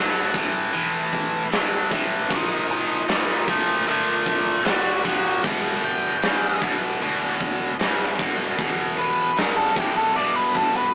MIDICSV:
0, 0, Header, 1, 5, 480
1, 0, Start_track
1, 0, Key_signature, 1, "minor"
1, 0, Tempo, 785340
1, 1408, Time_signature, 4, 2, 24, 8
1, 6687, End_track
2, 0, Start_track
2, 0, Title_t, "Lead electric guitar"
2, 0, Program_c, 0, 29
2, 0, Note_on_c, 0, 81, 100
2, 193, Note_off_c, 0, 81, 0
2, 1407, Note_on_c, 0, 70, 81
2, 1411, Note_on_c, 0, 79, 96
2, 1642, Note_off_c, 0, 79, 0
2, 1647, Note_off_c, 0, 70, 0
2, 1657, Note_on_c, 0, 70, 77
2, 1660, Note_on_c, 0, 79, 88
2, 1876, Note_off_c, 0, 70, 0
2, 1887, Note_off_c, 0, 79, 0
2, 1895, Note_on_c, 0, 70, 80
2, 1898, Note_on_c, 0, 79, 86
2, 2115, Note_off_c, 0, 70, 0
2, 2125, Note_off_c, 0, 79, 0
2, 2130, Note_on_c, 0, 76, 82
2, 2135, Note_on_c, 0, 81, 88
2, 2352, Note_off_c, 0, 76, 0
2, 2364, Note_off_c, 0, 81, 0
2, 2371, Note_on_c, 0, 76, 81
2, 2378, Note_on_c, 0, 81, 98
2, 2593, Note_off_c, 0, 76, 0
2, 2603, Note_off_c, 0, 81, 0
2, 2609, Note_on_c, 0, 76, 83
2, 2612, Note_on_c, 0, 81, 81
2, 2832, Note_off_c, 0, 76, 0
2, 2841, Note_on_c, 0, 73, 75
2, 2842, Note_off_c, 0, 81, 0
2, 2845, Note_on_c, 0, 82, 84
2, 3067, Note_off_c, 0, 73, 0
2, 3079, Note_off_c, 0, 82, 0
2, 3085, Note_on_c, 0, 73, 72
2, 3089, Note_on_c, 0, 82, 87
2, 3309, Note_off_c, 0, 73, 0
2, 3319, Note_off_c, 0, 82, 0
2, 3326, Note_on_c, 0, 79, 80
2, 3334, Note_on_c, 0, 83, 92
2, 3550, Note_off_c, 0, 79, 0
2, 3563, Note_off_c, 0, 83, 0
2, 3569, Note_on_c, 0, 79, 104
2, 4034, Note_off_c, 0, 79, 0
2, 5490, Note_on_c, 0, 71, 97
2, 5721, Note_off_c, 0, 71, 0
2, 5735, Note_on_c, 0, 70, 99
2, 5845, Note_off_c, 0, 70, 0
2, 5845, Note_on_c, 0, 69, 93
2, 5962, Note_off_c, 0, 69, 0
2, 5974, Note_on_c, 0, 67, 88
2, 6086, Note_off_c, 0, 67, 0
2, 6088, Note_on_c, 0, 69, 102
2, 6203, Note_off_c, 0, 69, 0
2, 6211, Note_on_c, 0, 74, 100
2, 6330, Note_off_c, 0, 74, 0
2, 6330, Note_on_c, 0, 71, 89
2, 6454, Note_off_c, 0, 71, 0
2, 6454, Note_on_c, 0, 69, 86
2, 6566, Note_off_c, 0, 69, 0
2, 6579, Note_on_c, 0, 71, 82
2, 6687, Note_off_c, 0, 71, 0
2, 6687, End_track
3, 0, Start_track
3, 0, Title_t, "Distorted electric guitar"
3, 0, Program_c, 1, 30
3, 0, Note_on_c, 1, 45, 80
3, 0, Note_on_c, 1, 54, 92
3, 184, Note_off_c, 1, 45, 0
3, 185, Note_off_c, 1, 54, 0
3, 211, Note_on_c, 1, 45, 64
3, 214, Note_on_c, 1, 52, 81
3, 425, Note_off_c, 1, 45, 0
3, 427, Note_off_c, 1, 52, 0
3, 447, Note_on_c, 1, 45, 79
3, 451, Note_on_c, 1, 52, 94
3, 879, Note_off_c, 1, 45, 0
3, 881, Note_off_c, 1, 52, 0
3, 928, Note_on_c, 1, 45, 84
3, 930, Note_on_c, 1, 54, 94
3, 1143, Note_off_c, 1, 45, 0
3, 1145, Note_off_c, 1, 54, 0
3, 1166, Note_on_c, 1, 45, 78
3, 1171, Note_on_c, 1, 52, 77
3, 1383, Note_off_c, 1, 45, 0
3, 1385, Note_off_c, 1, 52, 0
3, 1408, Note_on_c, 1, 46, 83
3, 1412, Note_on_c, 1, 53, 88
3, 1840, Note_off_c, 1, 46, 0
3, 1842, Note_off_c, 1, 53, 0
3, 1886, Note_on_c, 1, 46, 82
3, 1888, Note_on_c, 1, 55, 90
3, 2103, Note_off_c, 1, 46, 0
3, 2104, Note_off_c, 1, 55, 0
3, 2127, Note_on_c, 1, 46, 72
3, 2128, Note_on_c, 1, 53, 83
3, 2343, Note_off_c, 1, 46, 0
3, 2344, Note_off_c, 1, 53, 0
3, 2365, Note_on_c, 1, 46, 90
3, 2368, Note_on_c, 1, 53, 93
3, 2798, Note_off_c, 1, 46, 0
3, 2799, Note_off_c, 1, 53, 0
3, 2844, Note_on_c, 1, 46, 86
3, 2847, Note_on_c, 1, 55, 100
3, 3062, Note_off_c, 1, 46, 0
3, 3063, Note_off_c, 1, 55, 0
3, 3086, Note_on_c, 1, 46, 70
3, 3088, Note_on_c, 1, 53, 85
3, 3302, Note_off_c, 1, 46, 0
3, 3303, Note_off_c, 1, 53, 0
3, 3327, Note_on_c, 1, 40, 72
3, 3330, Note_on_c, 1, 47, 92
3, 3759, Note_off_c, 1, 40, 0
3, 3760, Note_off_c, 1, 47, 0
3, 3805, Note_on_c, 1, 40, 83
3, 3807, Note_on_c, 1, 49, 87
3, 4022, Note_off_c, 1, 40, 0
3, 4023, Note_off_c, 1, 49, 0
3, 4046, Note_on_c, 1, 40, 78
3, 4049, Note_on_c, 1, 47, 80
3, 4262, Note_off_c, 1, 40, 0
3, 4264, Note_off_c, 1, 47, 0
3, 4286, Note_on_c, 1, 40, 83
3, 4288, Note_on_c, 1, 47, 89
3, 4718, Note_off_c, 1, 40, 0
3, 4719, Note_off_c, 1, 47, 0
3, 4766, Note_on_c, 1, 40, 94
3, 4768, Note_on_c, 1, 49, 89
3, 4982, Note_off_c, 1, 40, 0
3, 4983, Note_off_c, 1, 49, 0
3, 5004, Note_on_c, 1, 40, 72
3, 5007, Note_on_c, 1, 47, 82
3, 5221, Note_off_c, 1, 40, 0
3, 5222, Note_off_c, 1, 47, 0
3, 5243, Note_on_c, 1, 40, 76
3, 5248, Note_on_c, 1, 47, 90
3, 5676, Note_off_c, 1, 40, 0
3, 5679, Note_off_c, 1, 47, 0
3, 5724, Note_on_c, 1, 40, 80
3, 5725, Note_on_c, 1, 49, 96
3, 5941, Note_off_c, 1, 40, 0
3, 5941, Note_off_c, 1, 49, 0
3, 5964, Note_on_c, 1, 40, 71
3, 5967, Note_on_c, 1, 47, 74
3, 6181, Note_off_c, 1, 40, 0
3, 6182, Note_off_c, 1, 47, 0
3, 6205, Note_on_c, 1, 40, 77
3, 6210, Note_on_c, 1, 47, 97
3, 6637, Note_off_c, 1, 40, 0
3, 6639, Note_off_c, 1, 47, 0
3, 6687, End_track
4, 0, Start_track
4, 0, Title_t, "Picked electric bass"
4, 0, Program_c, 2, 34
4, 0, Note_on_c, 2, 42, 92
4, 434, Note_off_c, 2, 42, 0
4, 453, Note_on_c, 2, 40, 86
4, 916, Note_off_c, 2, 40, 0
4, 932, Note_on_c, 2, 36, 92
4, 1395, Note_off_c, 2, 36, 0
4, 1407, Note_on_c, 2, 34, 87
4, 1873, Note_off_c, 2, 34, 0
4, 1887, Note_on_c, 2, 33, 90
4, 2353, Note_off_c, 2, 33, 0
4, 2361, Note_on_c, 2, 31, 86
4, 2830, Note_off_c, 2, 31, 0
4, 2842, Note_on_c, 2, 30, 95
4, 3310, Note_off_c, 2, 30, 0
4, 3326, Note_on_c, 2, 31, 80
4, 3792, Note_off_c, 2, 31, 0
4, 3801, Note_on_c, 2, 35, 90
4, 4269, Note_off_c, 2, 35, 0
4, 4282, Note_on_c, 2, 38, 91
4, 4749, Note_off_c, 2, 38, 0
4, 4764, Note_on_c, 2, 43, 99
4, 5230, Note_off_c, 2, 43, 0
4, 5250, Note_on_c, 2, 40, 82
4, 5713, Note_off_c, 2, 40, 0
4, 5723, Note_on_c, 2, 42, 91
4, 6190, Note_off_c, 2, 42, 0
4, 6206, Note_on_c, 2, 43, 89
4, 6671, Note_off_c, 2, 43, 0
4, 6687, End_track
5, 0, Start_track
5, 0, Title_t, "Drums"
5, 209, Note_on_c, 9, 36, 88
5, 210, Note_on_c, 9, 46, 66
5, 270, Note_off_c, 9, 36, 0
5, 271, Note_off_c, 9, 46, 0
5, 450, Note_on_c, 9, 46, 79
5, 511, Note_off_c, 9, 46, 0
5, 690, Note_on_c, 9, 36, 74
5, 690, Note_on_c, 9, 46, 51
5, 751, Note_off_c, 9, 36, 0
5, 751, Note_off_c, 9, 46, 0
5, 930, Note_on_c, 9, 46, 76
5, 938, Note_on_c, 9, 38, 112
5, 991, Note_off_c, 9, 46, 0
5, 999, Note_off_c, 9, 38, 0
5, 1168, Note_on_c, 9, 46, 60
5, 1169, Note_on_c, 9, 36, 83
5, 1229, Note_off_c, 9, 46, 0
5, 1230, Note_off_c, 9, 36, 0
5, 1295, Note_on_c, 9, 38, 35
5, 1356, Note_off_c, 9, 38, 0
5, 1405, Note_on_c, 9, 46, 72
5, 1409, Note_on_c, 9, 36, 111
5, 1467, Note_off_c, 9, 46, 0
5, 1470, Note_off_c, 9, 36, 0
5, 1649, Note_on_c, 9, 46, 54
5, 1710, Note_off_c, 9, 46, 0
5, 1886, Note_on_c, 9, 46, 72
5, 1893, Note_on_c, 9, 38, 111
5, 1947, Note_off_c, 9, 46, 0
5, 1955, Note_off_c, 9, 38, 0
5, 2122, Note_on_c, 9, 46, 55
5, 2126, Note_on_c, 9, 36, 92
5, 2183, Note_off_c, 9, 46, 0
5, 2187, Note_off_c, 9, 36, 0
5, 2365, Note_on_c, 9, 46, 74
5, 2426, Note_off_c, 9, 46, 0
5, 2602, Note_on_c, 9, 46, 58
5, 2605, Note_on_c, 9, 36, 78
5, 2663, Note_off_c, 9, 46, 0
5, 2667, Note_off_c, 9, 36, 0
5, 2843, Note_on_c, 9, 46, 80
5, 2851, Note_on_c, 9, 38, 110
5, 2905, Note_off_c, 9, 46, 0
5, 2912, Note_off_c, 9, 38, 0
5, 3086, Note_on_c, 9, 36, 86
5, 3086, Note_on_c, 9, 46, 63
5, 3147, Note_off_c, 9, 36, 0
5, 3148, Note_off_c, 9, 46, 0
5, 3214, Note_on_c, 9, 38, 34
5, 3275, Note_off_c, 9, 38, 0
5, 3326, Note_on_c, 9, 36, 117
5, 3327, Note_on_c, 9, 46, 76
5, 3387, Note_off_c, 9, 36, 0
5, 3388, Note_off_c, 9, 46, 0
5, 3565, Note_on_c, 9, 46, 57
5, 3626, Note_off_c, 9, 46, 0
5, 3803, Note_on_c, 9, 46, 86
5, 3811, Note_on_c, 9, 38, 115
5, 3865, Note_off_c, 9, 46, 0
5, 3872, Note_off_c, 9, 38, 0
5, 4043, Note_on_c, 9, 46, 66
5, 4045, Note_on_c, 9, 36, 90
5, 4104, Note_off_c, 9, 46, 0
5, 4106, Note_off_c, 9, 36, 0
5, 4286, Note_on_c, 9, 46, 81
5, 4347, Note_off_c, 9, 46, 0
5, 4413, Note_on_c, 9, 38, 33
5, 4474, Note_off_c, 9, 38, 0
5, 4525, Note_on_c, 9, 46, 57
5, 4526, Note_on_c, 9, 36, 79
5, 4586, Note_off_c, 9, 46, 0
5, 4587, Note_off_c, 9, 36, 0
5, 4766, Note_on_c, 9, 46, 81
5, 4773, Note_on_c, 9, 38, 112
5, 4827, Note_off_c, 9, 46, 0
5, 4835, Note_off_c, 9, 38, 0
5, 5007, Note_on_c, 9, 36, 92
5, 5008, Note_on_c, 9, 46, 62
5, 5069, Note_off_c, 9, 36, 0
5, 5069, Note_off_c, 9, 46, 0
5, 5136, Note_on_c, 9, 38, 35
5, 5197, Note_off_c, 9, 38, 0
5, 5248, Note_on_c, 9, 36, 113
5, 5251, Note_on_c, 9, 46, 75
5, 5309, Note_off_c, 9, 36, 0
5, 5312, Note_off_c, 9, 46, 0
5, 5490, Note_on_c, 9, 46, 54
5, 5551, Note_off_c, 9, 46, 0
5, 5729, Note_on_c, 9, 46, 75
5, 5737, Note_on_c, 9, 38, 116
5, 5790, Note_off_c, 9, 46, 0
5, 5798, Note_off_c, 9, 38, 0
5, 5968, Note_on_c, 9, 36, 92
5, 5969, Note_on_c, 9, 46, 55
5, 6029, Note_off_c, 9, 36, 0
5, 6030, Note_off_c, 9, 46, 0
5, 6212, Note_on_c, 9, 46, 71
5, 6273, Note_off_c, 9, 46, 0
5, 6448, Note_on_c, 9, 36, 82
5, 6449, Note_on_c, 9, 46, 55
5, 6509, Note_off_c, 9, 36, 0
5, 6511, Note_off_c, 9, 46, 0
5, 6687, End_track
0, 0, End_of_file